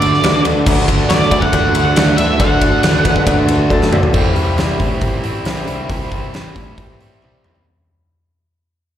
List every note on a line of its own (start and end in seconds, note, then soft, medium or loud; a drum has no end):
0.00 0.19 D2 medium
0.00 0.65 D3 medium
0.00 0.66 D3 medium
0.00 0.22 D3 medium
0.00 0.67 A3 medium
0.00 0.24 A3 medium
0.00 0.67 D4 medium
0.00 0.69 D4 loud
0.00 0.19 D4 medium
0.00 0.68 F#4 medium
0.00 0.19 F#4 medium
0.00 0.19 A4 medium
0.00 0.41 D5 medium
0.00 0.19 D5 medium
0.00 ride medium
0.05 0.24 D4 medium
0.05 0.25 F#4 medium
0.14 snare soft
0.23 0.41 D2 medium
0.23 0.34 D3 medium
0.23 0.35 A3 medium
0.23 0.41 D4 medium
0.23 0.35 D4 medium
0.23 0.41 F#4 medium
0.23 0.35 F#4 medium
0.23 0.41 D5 loud
0.23 snare loud
0.23 ride loud
0.23 cowbell medium
0.36 0.45 A3 medium
0.36 0.47 D4 medium
0.36 0.46 F#4 medium
0.45 0.63 D2 medium
0.45 0.56 D3 medium
0.45 0.57 A3 medium
0.45 0.63 D4 loud
0.45 0.56 D4 medium
0.45 0.63 F#4 loud
0.45 0.55 F#4 medium
0.45 0.63 A4 loud
0.45 0.63 D5 loud
0.45 ride medium
0.45 cowbell medium
0.56 0.67 A3 medium
0.56 0.67 D4 medium
0.56 0.67 F#4 medium
0.66 1.01 D2 loud
0.66 0.87 D3 loud
0.66 0.88 A3 medium
0.66 0.84 D4 loud
0.66 0.89 D4 loud
0.66 0.84 F#4 loud
0.66 0.89 F#4 loud
0.66 0.84 A4 loud
0.66 0.85 D5 loud
0.66 kick loud
0.66 cowbell medium
0.66 crash loud
0.86 1.09 D3 medium
0.86 1.10 A3 medium
0.86 1.05 D4 medium
0.86 1.10 D4 medium
0.86 1.11 F#4 medium
0.86 1.06 A4 medium
0.86 kick medium
0.86 ride medium
1.09 1.27 D2 medium
1.09 1.30 D3 medium
1.09 1.32 A3 medium
1.09 1.27 D4 medium
1.09 1.32 D4 medium
1.09 1.27 F#4 medium
1.09 1.33 F#4 medium
1.09 1.27 A4 medium
1.09 1.28 C5 medium
1.09 1.43 D5 medium
1.09 snare loud
1.09 ride loud
1.09 cowbell medium
1.22 snare soft
1.31 1.49 D2 medium
1.31 1.42 D3 medium
1.31 1.43 A3 medium
1.31 1.49 D4 medium
1.31 1.43 D4 medium
1.31 1.49 F#4 medium
1.31 1.41 F#4 medium
1.31 1.49 A4 medium
1.31 1.49 D5 medium
1.31 kick medium
1.31 ride medium
1.31 cowbell medium
1.41 1.76 D4 medium
1.41 1.75 F#4 medium
1.41 1.84 F#5 loud
1.41 kick medium
1.45 1.75 A3 medium
1.52 1.71 D2 loud
1.52 2.37 D3 medium
1.52 2.39 A3 medium
1.52 1.70 D4 medium
1.52 2.39 D4 medium
1.52 1.71 F#4 medium
1.52 2.40 F#4 medium
1.52 1.71 A4 medium
1.52 1.71 D5 medium
1.52 kick loud
1.52 ride loud
1.52 cowbell medium
1.74 1.92 D2 medium
1.74 1.95 D3 medium
1.74 1.96 A3 medium
1.74 1.92 D4 medium
1.74 1.97 D4 medium
1.74 1.93 F#4 medium
1.74 1.93 A4 medium
1.74 1.93 D5 medium
1.74 ride medium
1.79 1.97 F#4 medium
1.85 2.16 F#5 loud
1.96 2.14 D2 medium
1.96 2.07 D3 medium
1.96 2.08 A3 medium
1.96 2.14 D4 loud
1.96 2.08 D4 medium
1.96 2.14 F#4 medium
1.96 2.06 F#4 medium
1.96 2.14 A4 loud
1.96 2.14 D5 loud
1.96 snare loud
1.96 ride loud
1.96 cowbell medium
2.07 2.18 A3 medium
2.07 2.19 D4 medium
2.07 2.18 F#4 medium
2.17 2.36 D2 medium
2.17 2.29 D3 medium
2.17 2.30 A3 medium
2.17 2.36 D4 loud
2.17 2.30 D4 medium
2.17 2.36 F#4 medium
2.17 2.28 F#4 medium
2.17 2.36 A4 medium
2.17 2.37 B4 loud
2.17 2.40 E5 medium
2.17 ride medium
2.17 cowbell medium
2.29 2.39 A3 soft
2.29 2.40 D4 medium
2.29 2.40 F#4 medium
2.40 2.75 D2 medium
2.40 2.60 D3 medium
2.40 2.61 A3 medium
2.40 2.57 D4 loud
2.40 2.62 D4 medium
2.40 2.58 F#4 medium
2.40 2.63 F#4 medium
2.40 2.58 A4 loud
2.40 2.58 D5 loud
2.40 3.23 F#5 loud
2.40 kick loud
2.40 ride loud
2.40 cowbell loud
2.61 2.82 D3 medium
2.61 2.83 A3 medium
2.61 2.79 D4 medium
2.61 2.83 D4 medium
2.61 2.79 F#4 medium
2.61 2.84 F#4 medium
2.61 2.80 A4 medium
2.61 2.80 D5 medium
2.61 kick medium
2.61 ride medium
2.83 3.01 D2 medium
2.83 3.03 D3 medium
2.83 3.04 A3 medium
2.83 3.01 D4 medium
2.83 3.05 D4 medium
2.83 3.01 F#4 medium
2.83 3.06 F#4 medium
2.83 3.01 A4 medium
2.83 3.01 D5 medium
2.83 snare loud
2.83 ride loud
2.83 cowbell medium
3.04 3.22 D2 medium
3.04 3.16 D3 medium
3.04 3.16 A3 medium
3.04 3.22 D4 medium
3.04 3.15 D4 medium
3.04 3.23 F#4 medium
3.04 3.13 F#4 medium
3.04 3.23 A4 medium
3.04 3.69 B4 medium
3.04 3.23 D5 medium
3.04 kick medium
3.04 ride medium
3.04 cowbell medium
3.14 3.49 A3 medium
3.14 3.49 D4 medium
3.14 3.48 F#4 medium
3.14 kick medium
3.26 3.44 D2 loud
3.26 4.12 D3 medium
3.26 4.13 A3 medium
3.26 3.44 D4 medium
3.26 4.13 D4 medium
3.26 3.44 F#4 medium
3.26 4.14 F#4 medium
3.26 3.44 A4 medium
3.26 3.44 D5 loud
3.26 kick loud
3.26 ride loud
3.26 cowbell loud
3.48 3.67 D2 medium
3.48 3.70 D3 medium
3.48 3.71 A3 medium
3.48 3.66 D4 medium
3.48 3.71 D4 medium
3.48 3.66 F#4 medium
3.48 3.66 A4 medium
3.48 3.66 D5 loud
3.48 ride medium
3.52 3.72 F#4 medium
3.69 3.88 D2 medium
3.69 3.82 D3 loud
3.69 3.82 A3 loud
3.69 3.87 D4 loud
3.69 3.81 D4 loud
3.69 3.87 F#4 loud
3.69 3.80 F#4 medium
3.69 3.88 A4 loud
3.69 4.04 A4 loud
3.69 3.88 D5 loud
3.69 kick medium
3.69 cowbell medium
3.81 3.92 A3 medium
3.81 3.93 D4 medium
3.81 3.92 F#4 medium
3.81 snare medium
3.91 4.10 B1 medium
3.91 4.03 D3 medium
3.91 4.04 A3 medium
3.91 4.09 D4 loud
3.91 4.03 D4 medium
3.91 4.09 F#4 loud
3.91 4.01 F#4 medium
3.91 4.10 A4 loud
3.91 4.10 D5 loud
3.91 mid tom loud
3.91 cowbell medium
4.02 4.13 A3 medium
4.02 4.14 D4 medium
4.02 4.14 F#4 medium
4.02 floor tom medium
4.12 4.31 C2 medium
4.12 4.55 C3 medium
4.12 4.56 E3 medium
4.12 4.56 G3 medium
4.12 4.57 C4 medium
4.12 4.34 E4 medium
4.12 4.57 G4 medium
4.12 kick loud
4.12 crash medium
4.35 4.54 C2 medium
4.35 4.58 G3 medium
4.35 4.59 C4 medium
4.35 4.59 E4 medium
4.35 open hi-hat soft
4.56 4.75 C2 medium
4.56 4.79 C3 medium
4.56 4.78 E3 medium
4.56 4.79 G3 medium
4.56 4.79 C4 medium
4.56 4.80 G4 medium
4.56 snare medium
4.56 open hi-hat medium
4.60 5.22 E4 loud
4.79 4.97 A2 medium
4.79 5.12 E3 medium
4.79 5.13 G3 medium
4.79 5.13 C4 medium
4.79 5.11 G4 medium
4.79 kick medium
4.79 open hi-hat soft
5.01 5.36 A1 medium
5.01 kick loud
5.01 open hi-hat medium
5.12 5.24 G3 soft
5.12 5.24 C4 soft
5.12 5.23 G4 medium
5.22 5.45 E3 medium
5.22 5.45 G3 medium
5.22 5.46 C4 medium
5.22 5.47 E4 medium
5.22 5.46 G4 medium
5.22 open hi-hat medium
5.45 5.63 C2 medium
5.45 5.67 C3 medium
5.45 5.67 E3 medium
5.45 5.68 G3 medium
5.45 5.68 C4 medium
5.45 5.66 E4 medium
5.45 5.68 G4 medium
5.45 snare medium
5.45 open hi-hat medium
5.67 5.85 C2 medium
5.67 5.79 E3 medium
5.67 5.79 G3 medium
5.67 5.80 C4 medium
5.67 5.91 E4 medium
5.67 open hi-hat soft
5.71 5.78 G4 medium
5.79 5.91 G3 medium
5.79 5.91 C4 medium
5.79 5.90 G4 medium
5.89 6.07 C2 medium
5.89 6.32 C3 medium
5.89 6.33 E3 medium
5.89 6.34 G3 medium
5.89 6.34 C4 medium
5.89 6.10 E4 medium
5.89 6.34 G4 medium
5.89 kick loud
5.89 open hi-hat medium
6.11 6.29 C2 medium
6.11 6.33 G3 medium
6.11 6.34 C4 medium
6.11 6.34 E4 medium
6.11 kick medium
6.11 open hi-hat soft
6.33 6.51 C2 medium
6.33 6.55 C3 medium
6.33 6.54 E3 medium
6.33 6.56 G3 medium
6.33 6.56 C4 medium
6.33 6.98 E4 medium
6.33 6.56 G4 medium
6.33 snare medium
6.33 open hi-hat medium
6.56 6.73 A2 medium
6.56 6.66 E3 medium
6.56 6.67 G3 medium
6.56 6.67 C4 medium
6.56 6.66 G4 medium
6.56 kick medium
6.56 open hi-hat soft
6.67 6.90 G3 soft
6.67 6.89 C4 soft
6.67 6.88 G4 soft
6.78 7.12 A1 medium
6.78 kick loud
6.78 open hi-hat medium
6.89 7.00 G3 soft
6.89 7.01 C4 soft
6.89 7.00 G4 soft
6.99 7.21 E3 soft
6.99 7.21 G3 medium
6.99 7.22 C4 medium
6.99 7.23 E4 medium
6.99 7.22 G4 medium
6.99 open hi-hat soft
7.21 7.39 C2 medium
7.21 7.43 C3 medium
7.21 7.43 E3 medium
7.21 7.44 G3 medium
7.21 7.44 C4 medium
7.21 7.42 E4 medium
7.21 7.45 G4 medium
7.21 high tom medium
7.43 7.61 C2 medium
7.43 7.55 E3 medium
7.43 7.55 G3 medium
7.43 7.56 C4 medium
7.43 7.64 E4 medium
7.43 7.53 G4 medium
7.43 mid tom medium
7.55 7.67 G3 soft
7.55 7.67 C4 soft
7.55 7.66 G4 soft
7.55 floor tom medium